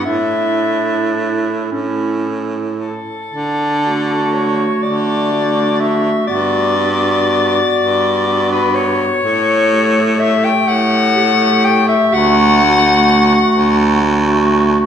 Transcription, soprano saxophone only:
\new Staff \with { instrumentName = "Soprano saxophone" } { \time 6/8 \key d \major \tempo 4. = 41 e''4. r4 a'8~ | a'4 cis''8 d''4 e''8 | d''2~ d''16 b'16 cis''8~ | cis''4 e''16 g''16 fis''4 g''16 e''16 |
fis''2~ fis''8 r8 | }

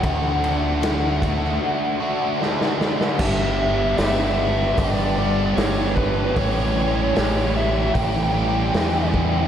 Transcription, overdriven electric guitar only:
\new Staff \with { instrumentName = "Overdriven electric guitar" } { \time 4/4 \key g \lydian \tempo 4 = 76 <d a d' fis'>4 <d a d' fis'>8 <a d' fis'>4 <a d' fis'>8 <d a d' fis'>4 | <g, d g b d' g'>4 <g b d' g'>4 <g, d g b d' g'>8 <g b d' g'>8 <g b d' g'>4 | <a, e g cis' g'>4 <e g cis' g'>4 <a, e g cis' g'>8 <g cis' g'>8 <e g cis' g'>4 | }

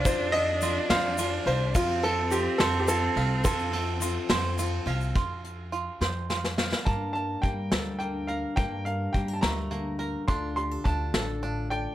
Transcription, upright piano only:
\new Staff \with { instrumentName = "Upright piano" } { \time 6/8 \key g \minor \tempo 4. = 70 c''8 ees''4 f''4 c''8 | f'8 a'8 g'8 a'16. g'32 a'4 | a'2 r4 | r2. |
a''8 a''8 g''4 g''8 f''8 | g''8 f''8 g''16. a''32 bes''4~ bes''32 r16. | c'''8 c'''8 a''4. g''8 | }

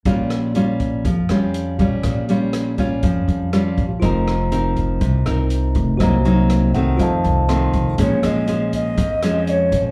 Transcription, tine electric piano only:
\new Staff \with { instrumentName = "Tine electric piano" } { \time 4/4 \key bes \dorian \tempo 4 = 121 << { r1 | r1 | r1 | r4. ges''8 f''8 a''8 c'''4 |
\key bes \minor r1 | } \\ { r1 | r1 | <f' c'' ees'' bes''>1 | <ges' c'' ees'' bes''>2 <f' c'' ees'' a''>2 |
r1 | } >> }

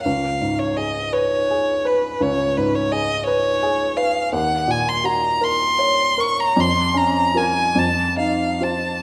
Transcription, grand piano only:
\new Staff \with { instrumentName = "Grand piano" } { \time 12/8 \key des \major \tempo 4. = 55 des,8 aes,8 aes'8 ces''8 aes'8 ces''8 des,8 aes,8 aes'8 ces''8 aes'8 ces''8 | ees,8 bes,8 ges'8 bes'8 des''8 bes'8 f,8 des'8 <f' bes'>8 f,8 ees'8 <f' c''>8 | }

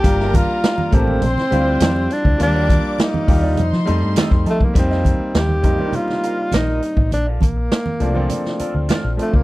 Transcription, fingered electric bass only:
\new Staff \with { instrumentName = "Fingered electric bass" } { \clef bass \time 4/4 \key f \mixolydian \tempo 4 = 102 g,,8. r8. a,,8 bes,,16 r16 d,8 f,8 r16 d,16 | ees,8. r8. ees,8 f,16 f16 f,16 g,16 r16 f,16 f8 | f,8. r16 ees,8 f,16 r4 r16 bes,,8 r16 a,,16 | bes,,8 bes,,8 r8 c,8 r8. d,16 r16 bes,,16 r16 des,16 | }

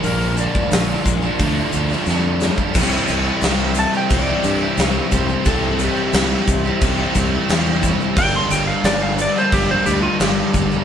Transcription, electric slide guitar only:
\new Staff \with { instrumentName = "Electric slide guitar" } { \time 4/4 \key c \mixolydian \tempo 4 = 89 bes'8 d''2. r8 | r4. a''16 g''16 d''4. c''8 | a'8 g'2. r8 | g''16 c'''16 g''16 f''16 d''16 f''16 d''16 c''16 g'16 c''16 g'16 f'16 g'4 | }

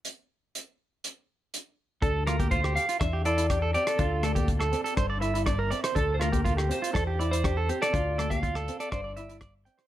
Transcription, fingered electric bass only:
\new Staff \with { instrumentName = "Fingered electric bass" } { \clef bass \time 4/4 \key d \minor \tempo 4 = 122 r1 | d,2 e,2 | d,2 g,,2 | d,2 e,2 |
d,2 g,,2 | }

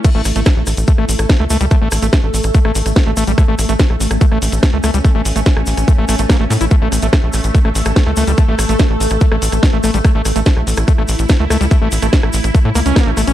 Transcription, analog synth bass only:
\new Staff \with { instrumentName = "Analog synth bass" } { \clef bass \time 4/4 \key a \major \tempo 4 = 144 r16 a,,16 a,,16 a,,16 r16 bes,,16 a,,16 a,,16 r16 a,,16 a,,16 a,,16 r16 cis,16 cis,16 cis,16 | r16 a,,16 a,,16 a,,16 r16 a,,16 a,,16 a,,16 r16 a,,16 a,,16 a,,16 r16 a,,16 a,,16 a,,16 | r16 a,,16 a,,16 a,,16 r16 bes,,16 a,,16 a,,16 r16 a,,16 a,,16 a,,16 r16 cis,16 cis,16 cis,16 | r16 a,,16 a,,16 a,,16 r16 a,,16 a,,16 a,,16 r16 a,,16 a,,16 a,,16 r16 a,,16 a,16 a,,16 |
r16 a,,16 a,,16 a,,16 r16 bes,,16 a,,16 a,,16 r16 a,,16 a,,16 a,,16 r16 cis,16 cis,16 cis,16 | r16 a,,16 a,,16 a,,16 r16 a,,16 a,,16 a,,16 r16 a,,16 a,,16 a,,16 r16 a,,16 a,,16 a,,16 | r16 a,,16 a,,16 a,,16 r16 bes,,16 a,,16 a,,16 r16 a,,16 a,,16 a,,16 r16 cis,16 cis,16 cis,16 | r16 a,,16 a,,16 a,,16 r16 a,,16 a,,16 a,,16 r16 a,16 cis,16 cis,16 r16 a,,16 a,,16 a,,16 | }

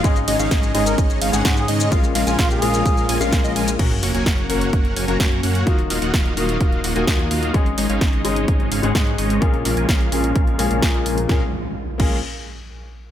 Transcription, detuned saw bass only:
\new Staff \with { instrumentName = "Detuned saw bass" } { \clef bass \time 4/4 \key bes \minor \tempo 4 = 128 aes,,8 aes,,16 aes,,16 aes,,8 aes,,8 aes,,8 aes,,16 aes,,16 aes,8 aes,8 | bes,,8 bes,,16 bes,,16 bes,,8 bes,,8 bes,,8 bes,,16 bes,,8 bes,,16 bes,,8 | ges,,8 ges,,16 ges,,16 ges,,8 ges,,8 ges,,8 ges,,16 ges,,16 ges,8 ges,8 | ees,,8 ees,,16 ees,,16 ees,,8 ees,,8 ees,,8 ees,,16 ees,,16 ees,8 ees,8 |
aes,,8 aes,,16 aes,,16 aes,,8 aes,,8 aes,,8 aes,,16 aes,,16 aes,8 aes,,8 | bes,,8 bes,,16 bes,,16 bes,,8 bes,,8 bes,,8 bes,,16 bes,,8 bes,,16 bes,,8 | bes,,16 r4 r16 bes,,8 r2 | }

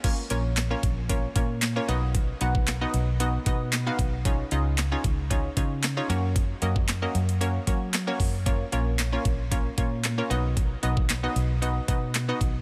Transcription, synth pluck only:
\new Staff \with { instrumentName = "Synth pluck" } { \time 4/4 \key bes \phrygian \tempo 4 = 114 <bes des' f' bes' des''>16 r16 <bes des' f' bes' des''>8 r16 <bes des' f' bes' des''>8 r16 <bes des' f' bes' des''>16 r16 <bes des' f' bes' des''>8 r16 <bes des' f' bes' des''>16 <b dis' fis' b' dis''>8~ | <b dis' fis' b' dis''>16 r16 <b dis' fis' b' fis''>8 r16 <b dis' fis' b' dis''>8 r16 <b dis' fis' b' dis''>16 r16 <b dis' fis' b' dis''>8 r16 <b dis' fis' b' f''>8 r16 | <des' ees' f' aes' des''>16 r16 <des' ees' f' aes' ees''>8 r16 <des' ees' f' aes' des''>8 r16 <des' ees' f' aes' des''>16 r16 <des' ees' f' aes' des''>8 r16 <des' ees' f' aes' des''>16 <bes des' ges' bes' des''>8~ | <bes des' ges' bes' des''>16 r16 <bes des' ges' bes' ees''>8 r16 <bes des' ges' bes' ees''>8 r16 <bes des' ges' bes' des''>16 r16 <bes des' ges' bes' des''>8 r16 <bes des' ges' bes' des''>8 r16 |
<bes des' f' bes' des''>16 r16 <bes des' f' bes' des''>8 r16 <bes des' f' bes' des''>8 r16 <bes des' f' bes' des''>16 r16 <bes des' f' bes' des''>8 r16 <bes des' f' bes' des''>16 <b dis' fis' b' dis''>8~ | <b dis' fis' b' dis''>16 r16 <b dis' fis' b' dis''>8 r16 <b dis' fis' b' dis''>8 r16 <b dis' fis' b' dis''>16 r16 <b dis' fis' b' dis''>8 r16 <b dis' fis' b' dis''>8 r16 | }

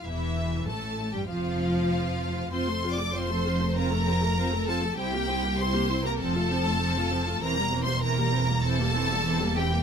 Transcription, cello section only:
\new Staff \with { instrumentName = "Cello section" } { \clef bass \time 4/4 \key f \major \tempo 4 = 98 e,4 a,8. g,16 f,2 | f,1 | c,2 f,2 | \key c \mixolydian e,1 | }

